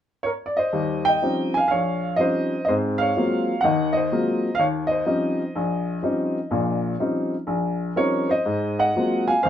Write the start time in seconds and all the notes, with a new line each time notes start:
0.23 A#4 C#5
0.46 D5
0.57 C5 D#5
0.73 D#2 G3
1.05 D#5 G5
1.22 F3 G3 C4 C#4 D#4
1.54 F5 G#5
1.68 A#1 C#5 F5
2.16 F3 G3 C4 C#4 D#4 D#5
2.21 C5
2.65 C5 D#5
2.69 G#2 C4
2.98 C#5 F5
3.17 F#3 G#3 A#3 C4 F4
3.61 D#2 D#3 F#5
3.65 D#5
3.93 D#5
3.97 C5
4.12 F#3 G#3 A#3 C4 F4
4.55 F5
4.59 D#2 C#5
4.87 D#5
4.91 C5
5.06 F3 G3 C4 C#4 D#4
5.56 A#1
6.02 F3 G3 C4 C#4 D#4
6.51 A#1 A#2
6.99 F3 G3 C4 C#4 D#4
7.47 A#1
7.96 F3 G3 C4 C#4 D#4 A#4 C#5
8.29 C5 D#5
8.46 G#2
8.79 D#5 F#5
8.95 F#3 G#3 A#3 C4 F4
9.27 F5 G#5
9.43 D#2 D#3 C5 F5